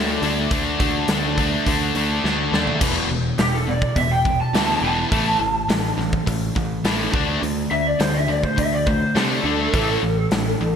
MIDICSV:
0, 0, Header, 1, 5, 480
1, 0, Start_track
1, 0, Tempo, 577478
1, 419, Time_signature, 4, 2, 24, 8
1, 8943, End_track
2, 0, Start_track
2, 0, Title_t, "Lead electric guitar"
2, 0, Program_c, 0, 29
2, 2820, Note_on_c, 0, 67, 74
2, 2935, Note_off_c, 0, 67, 0
2, 2948, Note_on_c, 0, 69, 68
2, 3059, Note_off_c, 0, 69, 0
2, 3066, Note_on_c, 0, 74, 79
2, 3293, Note_off_c, 0, 74, 0
2, 3300, Note_on_c, 0, 76, 84
2, 3414, Note_off_c, 0, 76, 0
2, 3418, Note_on_c, 0, 79, 73
2, 3649, Note_off_c, 0, 79, 0
2, 3664, Note_on_c, 0, 81, 90
2, 4008, Note_off_c, 0, 81, 0
2, 4019, Note_on_c, 0, 81, 83
2, 4947, Note_off_c, 0, 81, 0
2, 6409, Note_on_c, 0, 76, 96
2, 6540, Note_off_c, 0, 76, 0
2, 6540, Note_on_c, 0, 74, 78
2, 6650, Note_off_c, 0, 74, 0
2, 6650, Note_on_c, 0, 72, 92
2, 6766, Note_on_c, 0, 76, 93
2, 6768, Note_off_c, 0, 72, 0
2, 6886, Note_off_c, 0, 76, 0
2, 6895, Note_on_c, 0, 74, 83
2, 7009, Note_off_c, 0, 74, 0
2, 7013, Note_on_c, 0, 72, 84
2, 7130, Note_off_c, 0, 72, 0
2, 7138, Note_on_c, 0, 76, 102
2, 7252, Note_off_c, 0, 76, 0
2, 7252, Note_on_c, 0, 74, 90
2, 7370, Note_off_c, 0, 74, 0
2, 7375, Note_on_c, 0, 72, 81
2, 7608, Note_off_c, 0, 72, 0
2, 7616, Note_on_c, 0, 69, 89
2, 8943, Note_off_c, 0, 69, 0
2, 8943, End_track
3, 0, Start_track
3, 0, Title_t, "Overdriven electric guitar"
3, 0, Program_c, 1, 29
3, 0, Note_on_c, 1, 50, 83
3, 0, Note_on_c, 1, 57, 86
3, 0, Note_on_c, 1, 62, 74
3, 182, Note_off_c, 1, 50, 0
3, 184, Note_off_c, 1, 57, 0
3, 188, Note_off_c, 1, 62, 0
3, 192, Note_on_c, 1, 50, 86
3, 194, Note_on_c, 1, 57, 80
3, 198, Note_on_c, 1, 62, 84
3, 418, Note_off_c, 1, 50, 0
3, 422, Note_off_c, 1, 57, 0
3, 423, Note_off_c, 1, 62, 0
3, 428, Note_on_c, 1, 50, 86
3, 432, Note_on_c, 1, 57, 97
3, 433, Note_on_c, 1, 62, 92
3, 657, Note_off_c, 1, 50, 0
3, 660, Note_off_c, 1, 57, 0
3, 664, Note_off_c, 1, 62, 0
3, 667, Note_on_c, 1, 50, 86
3, 670, Note_on_c, 1, 57, 88
3, 674, Note_on_c, 1, 62, 94
3, 901, Note_off_c, 1, 50, 0
3, 905, Note_off_c, 1, 62, 0
3, 906, Note_off_c, 1, 57, 0
3, 911, Note_on_c, 1, 50, 79
3, 915, Note_on_c, 1, 62, 97
3, 916, Note_on_c, 1, 57, 85
3, 1141, Note_off_c, 1, 50, 0
3, 1148, Note_off_c, 1, 57, 0
3, 1149, Note_off_c, 1, 62, 0
3, 1151, Note_on_c, 1, 50, 84
3, 1158, Note_on_c, 1, 57, 86
3, 1159, Note_on_c, 1, 62, 96
3, 1375, Note_off_c, 1, 50, 0
3, 1383, Note_off_c, 1, 57, 0
3, 1385, Note_on_c, 1, 50, 77
3, 1386, Note_off_c, 1, 62, 0
3, 1393, Note_on_c, 1, 57, 80
3, 1396, Note_on_c, 1, 62, 80
3, 1619, Note_off_c, 1, 50, 0
3, 1624, Note_off_c, 1, 57, 0
3, 1629, Note_off_c, 1, 62, 0
3, 1629, Note_on_c, 1, 50, 94
3, 1634, Note_on_c, 1, 57, 89
3, 1639, Note_on_c, 1, 62, 96
3, 1852, Note_off_c, 1, 50, 0
3, 1858, Note_off_c, 1, 57, 0
3, 1859, Note_off_c, 1, 62, 0
3, 1862, Note_on_c, 1, 50, 76
3, 1868, Note_on_c, 1, 57, 81
3, 1869, Note_on_c, 1, 62, 81
3, 2091, Note_off_c, 1, 50, 0
3, 2094, Note_off_c, 1, 57, 0
3, 2101, Note_on_c, 1, 50, 77
3, 2102, Note_off_c, 1, 62, 0
3, 2104, Note_on_c, 1, 57, 80
3, 2112, Note_on_c, 1, 62, 91
3, 2324, Note_off_c, 1, 50, 0
3, 2326, Note_off_c, 1, 57, 0
3, 2328, Note_on_c, 1, 40, 71
3, 2330, Note_off_c, 1, 62, 0
3, 2335, Note_on_c, 1, 47, 81
3, 2338, Note_on_c, 1, 52, 83
3, 2558, Note_off_c, 1, 40, 0
3, 2561, Note_off_c, 1, 47, 0
3, 2563, Note_off_c, 1, 52, 0
3, 2577, Note_on_c, 1, 40, 75
3, 2579, Note_on_c, 1, 47, 83
3, 2792, Note_off_c, 1, 40, 0
3, 2793, Note_off_c, 1, 47, 0
3, 2809, Note_on_c, 1, 40, 75
3, 2811, Note_on_c, 1, 47, 73
3, 3028, Note_off_c, 1, 40, 0
3, 3029, Note_off_c, 1, 47, 0
3, 3050, Note_on_c, 1, 40, 65
3, 3053, Note_on_c, 1, 47, 68
3, 3269, Note_off_c, 1, 40, 0
3, 3270, Note_off_c, 1, 47, 0
3, 3298, Note_on_c, 1, 40, 77
3, 3299, Note_on_c, 1, 47, 68
3, 3513, Note_off_c, 1, 40, 0
3, 3513, Note_off_c, 1, 47, 0
3, 3543, Note_on_c, 1, 40, 72
3, 3546, Note_on_c, 1, 47, 73
3, 3755, Note_off_c, 1, 40, 0
3, 3757, Note_off_c, 1, 47, 0
3, 3777, Note_on_c, 1, 40, 78
3, 3781, Note_on_c, 1, 52, 83
3, 3782, Note_on_c, 1, 47, 78
3, 4001, Note_off_c, 1, 40, 0
3, 4003, Note_off_c, 1, 52, 0
3, 4004, Note_off_c, 1, 47, 0
3, 4015, Note_on_c, 1, 40, 82
3, 4022, Note_on_c, 1, 47, 85
3, 4022, Note_on_c, 1, 52, 92
3, 4240, Note_off_c, 1, 40, 0
3, 4244, Note_off_c, 1, 47, 0
3, 4244, Note_off_c, 1, 52, 0
3, 4254, Note_on_c, 1, 45, 75
3, 4255, Note_on_c, 1, 52, 93
3, 4256, Note_on_c, 1, 57, 85
3, 4480, Note_off_c, 1, 45, 0
3, 4480, Note_off_c, 1, 52, 0
3, 4481, Note_off_c, 1, 57, 0
3, 4499, Note_on_c, 1, 45, 66
3, 4499, Note_on_c, 1, 52, 68
3, 4712, Note_off_c, 1, 45, 0
3, 4712, Note_off_c, 1, 52, 0
3, 4730, Note_on_c, 1, 45, 75
3, 4732, Note_on_c, 1, 52, 76
3, 4947, Note_off_c, 1, 45, 0
3, 4949, Note_off_c, 1, 52, 0
3, 4968, Note_on_c, 1, 45, 65
3, 4977, Note_on_c, 1, 52, 79
3, 5187, Note_off_c, 1, 45, 0
3, 5191, Note_off_c, 1, 52, 0
3, 5206, Note_on_c, 1, 45, 69
3, 5207, Note_on_c, 1, 52, 86
3, 5426, Note_off_c, 1, 45, 0
3, 5426, Note_off_c, 1, 52, 0
3, 5446, Note_on_c, 1, 45, 68
3, 5447, Note_on_c, 1, 52, 79
3, 5666, Note_off_c, 1, 45, 0
3, 5666, Note_off_c, 1, 52, 0
3, 5691, Note_on_c, 1, 45, 85
3, 5691, Note_on_c, 1, 52, 93
3, 5696, Note_on_c, 1, 57, 84
3, 5918, Note_off_c, 1, 45, 0
3, 5918, Note_off_c, 1, 52, 0
3, 5920, Note_off_c, 1, 57, 0
3, 5935, Note_on_c, 1, 50, 76
3, 5940, Note_on_c, 1, 57, 87
3, 5940, Note_on_c, 1, 62, 99
3, 6156, Note_off_c, 1, 50, 0
3, 6162, Note_off_c, 1, 57, 0
3, 6162, Note_off_c, 1, 62, 0
3, 6166, Note_on_c, 1, 50, 74
3, 6171, Note_on_c, 1, 57, 87
3, 6386, Note_off_c, 1, 50, 0
3, 6388, Note_off_c, 1, 57, 0
3, 6405, Note_on_c, 1, 50, 69
3, 6409, Note_on_c, 1, 57, 77
3, 6625, Note_off_c, 1, 50, 0
3, 6627, Note_off_c, 1, 57, 0
3, 6646, Note_on_c, 1, 50, 75
3, 6651, Note_on_c, 1, 57, 78
3, 6866, Note_off_c, 1, 50, 0
3, 6868, Note_off_c, 1, 57, 0
3, 6887, Note_on_c, 1, 50, 60
3, 6888, Note_on_c, 1, 57, 76
3, 7106, Note_off_c, 1, 50, 0
3, 7107, Note_off_c, 1, 57, 0
3, 7117, Note_on_c, 1, 50, 69
3, 7125, Note_on_c, 1, 57, 72
3, 7342, Note_off_c, 1, 50, 0
3, 7346, Note_off_c, 1, 57, 0
3, 7368, Note_on_c, 1, 50, 69
3, 7373, Note_on_c, 1, 57, 79
3, 7588, Note_off_c, 1, 50, 0
3, 7590, Note_off_c, 1, 57, 0
3, 7604, Note_on_c, 1, 50, 74
3, 7608, Note_on_c, 1, 57, 77
3, 7609, Note_on_c, 1, 62, 86
3, 7835, Note_off_c, 1, 50, 0
3, 7837, Note_off_c, 1, 57, 0
3, 7838, Note_off_c, 1, 62, 0
3, 7851, Note_on_c, 1, 50, 90
3, 7857, Note_on_c, 1, 57, 89
3, 7858, Note_on_c, 1, 62, 86
3, 8079, Note_off_c, 1, 50, 0
3, 8082, Note_off_c, 1, 57, 0
3, 8083, Note_off_c, 1, 62, 0
3, 8098, Note_on_c, 1, 45, 80
3, 8098, Note_on_c, 1, 52, 86
3, 8103, Note_on_c, 1, 57, 85
3, 8323, Note_off_c, 1, 45, 0
3, 8323, Note_off_c, 1, 52, 0
3, 8325, Note_off_c, 1, 57, 0
3, 8332, Note_on_c, 1, 45, 77
3, 8336, Note_on_c, 1, 52, 71
3, 8551, Note_off_c, 1, 45, 0
3, 8553, Note_off_c, 1, 52, 0
3, 8580, Note_on_c, 1, 45, 72
3, 8580, Note_on_c, 1, 52, 85
3, 8795, Note_off_c, 1, 45, 0
3, 8795, Note_off_c, 1, 52, 0
3, 8817, Note_on_c, 1, 45, 67
3, 8818, Note_on_c, 1, 52, 66
3, 8943, Note_off_c, 1, 45, 0
3, 8943, Note_off_c, 1, 52, 0
3, 8943, End_track
4, 0, Start_track
4, 0, Title_t, "Picked electric bass"
4, 0, Program_c, 2, 34
4, 0, Note_on_c, 2, 38, 88
4, 141, Note_off_c, 2, 38, 0
4, 183, Note_on_c, 2, 38, 87
4, 381, Note_off_c, 2, 38, 0
4, 424, Note_on_c, 2, 38, 90
4, 622, Note_off_c, 2, 38, 0
4, 665, Note_on_c, 2, 38, 87
4, 862, Note_off_c, 2, 38, 0
4, 899, Note_on_c, 2, 38, 81
4, 1298, Note_off_c, 2, 38, 0
4, 1386, Note_on_c, 2, 38, 85
4, 1582, Note_off_c, 2, 38, 0
4, 1619, Note_on_c, 2, 38, 76
4, 1818, Note_off_c, 2, 38, 0
4, 1863, Note_on_c, 2, 38, 87
4, 2060, Note_off_c, 2, 38, 0
4, 2095, Note_on_c, 2, 39, 75
4, 2296, Note_off_c, 2, 39, 0
4, 2337, Note_on_c, 2, 28, 76
4, 2521, Note_off_c, 2, 28, 0
4, 2570, Note_on_c, 2, 28, 73
4, 2757, Note_off_c, 2, 28, 0
4, 2815, Note_on_c, 2, 28, 90
4, 3184, Note_off_c, 2, 28, 0
4, 3292, Note_on_c, 2, 28, 99
4, 3662, Note_off_c, 2, 28, 0
4, 3767, Note_on_c, 2, 38, 83
4, 3955, Note_off_c, 2, 38, 0
4, 4003, Note_on_c, 2, 28, 85
4, 4192, Note_off_c, 2, 28, 0
4, 4254, Note_on_c, 2, 33, 82
4, 4438, Note_off_c, 2, 33, 0
4, 4485, Note_on_c, 2, 33, 80
4, 4673, Note_off_c, 2, 33, 0
4, 4726, Note_on_c, 2, 33, 94
4, 4913, Note_off_c, 2, 33, 0
4, 4968, Note_on_c, 2, 33, 90
4, 5155, Note_off_c, 2, 33, 0
4, 5213, Note_on_c, 2, 33, 98
4, 5398, Note_off_c, 2, 33, 0
4, 5455, Note_on_c, 2, 33, 87
4, 5639, Note_off_c, 2, 33, 0
4, 5691, Note_on_c, 2, 33, 85
4, 5877, Note_off_c, 2, 33, 0
4, 5933, Note_on_c, 2, 38, 85
4, 6118, Note_off_c, 2, 38, 0
4, 6172, Note_on_c, 2, 38, 92
4, 6358, Note_off_c, 2, 38, 0
4, 6407, Note_on_c, 2, 38, 72
4, 6594, Note_off_c, 2, 38, 0
4, 6652, Note_on_c, 2, 38, 89
4, 7022, Note_off_c, 2, 38, 0
4, 7131, Note_on_c, 2, 38, 90
4, 7502, Note_off_c, 2, 38, 0
4, 7609, Note_on_c, 2, 48, 86
4, 7796, Note_off_c, 2, 48, 0
4, 7845, Note_on_c, 2, 38, 90
4, 8034, Note_off_c, 2, 38, 0
4, 8094, Note_on_c, 2, 33, 77
4, 8280, Note_off_c, 2, 33, 0
4, 8335, Note_on_c, 2, 33, 79
4, 8521, Note_off_c, 2, 33, 0
4, 8576, Note_on_c, 2, 33, 86
4, 8762, Note_off_c, 2, 33, 0
4, 8818, Note_on_c, 2, 33, 75
4, 8943, Note_off_c, 2, 33, 0
4, 8943, End_track
5, 0, Start_track
5, 0, Title_t, "Drums"
5, 188, Note_on_c, 9, 46, 52
5, 271, Note_off_c, 9, 46, 0
5, 423, Note_on_c, 9, 46, 57
5, 425, Note_on_c, 9, 36, 103
5, 507, Note_off_c, 9, 46, 0
5, 508, Note_off_c, 9, 36, 0
5, 665, Note_on_c, 9, 36, 90
5, 665, Note_on_c, 9, 46, 55
5, 748, Note_off_c, 9, 36, 0
5, 748, Note_off_c, 9, 46, 0
5, 897, Note_on_c, 9, 46, 63
5, 904, Note_on_c, 9, 38, 95
5, 980, Note_off_c, 9, 46, 0
5, 987, Note_off_c, 9, 38, 0
5, 1145, Note_on_c, 9, 36, 77
5, 1147, Note_on_c, 9, 46, 53
5, 1228, Note_off_c, 9, 36, 0
5, 1230, Note_off_c, 9, 46, 0
5, 1384, Note_on_c, 9, 36, 82
5, 1384, Note_on_c, 9, 46, 74
5, 1467, Note_off_c, 9, 36, 0
5, 1467, Note_off_c, 9, 46, 0
5, 1620, Note_on_c, 9, 46, 57
5, 1703, Note_off_c, 9, 46, 0
5, 1872, Note_on_c, 9, 38, 54
5, 1955, Note_off_c, 9, 38, 0
5, 2108, Note_on_c, 9, 38, 73
5, 2192, Note_off_c, 9, 38, 0
5, 2222, Note_on_c, 9, 43, 74
5, 2305, Note_off_c, 9, 43, 0
5, 2336, Note_on_c, 9, 49, 104
5, 2337, Note_on_c, 9, 36, 95
5, 2420, Note_off_c, 9, 36, 0
5, 2420, Note_off_c, 9, 49, 0
5, 2812, Note_on_c, 9, 46, 52
5, 2819, Note_on_c, 9, 38, 95
5, 2895, Note_off_c, 9, 46, 0
5, 2902, Note_off_c, 9, 38, 0
5, 3174, Note_on_c, 9, 36, 84
5, 3257, Note_off_c, 9, 36, 0
5, 3293, Note_on_c, 9, 36, 86
5, 3294, Note_on_c, 9, 46, 49
5, 3376, Note_off_c, 9, 36, 0
5, 3377, Note_off_c, 9, 46, 0
5, 3535, Note_on_c, 9, 36, 79
5, 3618, Note_off_c, 9, 36, 0
5, 3778, Note_on_c, 9, 46, 53
5, 3785, Note_on_c, 9, 38, 98
5, 3861, Note_off_c, 9, 46, 0
5, 3868, Note_off_c, 9, 38, 0
5, 4254, Note_on_c, 9, 36, 93
5, 4255, Note_on_c, 9, 46, 48
5, 4338, Note_off_c, 9, 36, 0
5, 4339, Note_off_c, 9, 46, 0
5, 4734, Note_on_c, 9, 46, 53
5, 4741, Note_on_c, 9, 38, 101
5, 4817, Note_off_c, 9, 46, 0
5, 4824, Note_off_c, 9, 38, 0
5, 4985, Note_on_c, 9, 38, 28
5, 5068, Note_off_c, 9, 38, 0
5, 5094, Note_on_c, 9, 36, 86
5, 5178, Note_off_c, 9, 36, 0
5, 5214, Note_on_c, 9, 36, 91
5, 5216, Note_on_c, 9, 46, 51
5, 5297, Note_off_c, 9, 36, 0
5, 5299, Note_off_c, 9, 46, 0
5, 5454, Note_on_c, 9, 36, 81
5, 5537, Note_off_c, 9, 36, 0
5, 5690, Note_on_c, 9, 46, 55
5, 5697, Note_on_c, 9, 38, 100
5, 5773, Note_off_c, 9, 46, 0
5, 5780, Note_off_c, 9, 38, 0
5, 5931, Note_on_c, 9, 36, 106
5, 6014, Note_off_c, 9, 36, 0
5, 6177, Note_on_c, 9, 46, 48
5, 6260, Note_off_c, 9, 46, 0
5, 6648, Note_on_c, 9, 46, 55
5, 6655, Note_on_c, 9, 38, 96
5, 6732, Note_off_c, 9, 46, 0
5, 6738, Note_off_c, 9, 38, 0
5, 7011, Note_on_c, 9, 36, 82
5, 7094, Note_off_c, 9, 36, 0
5, 7131, Note_on_c, 9, 36, 91
5, 7131, Note_on_c, 9, 46, 57
5, 7214, Note_off_c, 9, 36, 0
5, 7214, Note_off_c, 9, 46, 0
5, 7371, Note_on_c, 9, 36, 86
5, 7455, Note_off_c, 9, 36, 0
5, 7613, Note_on_c, 9, 46, 51
5, 7620, Note_on_c, 9, 38, 97
5, 7696, Note_off_c, 9, 46, 0
5, 7703, Note_off_c, 9, 38, 0
5, 8092, Note_on_c, 9, 46, 46
5, 8093, Note_on_c, 9, 36, 96
5, 8176, Note_off_c, 9, 36, 0
5, 8176, Note_off_c, 9, 46, 0
5, 8569, Note_on_c, 9, 46, 47
5, 8576, Note_on_c, 9, 38, 101
5, 8652, Note_off_c, 9, 46, 0
5, 8659, Note_off_c, 9, 38, 0
5, 8943, End_track
0, 0, End_of_file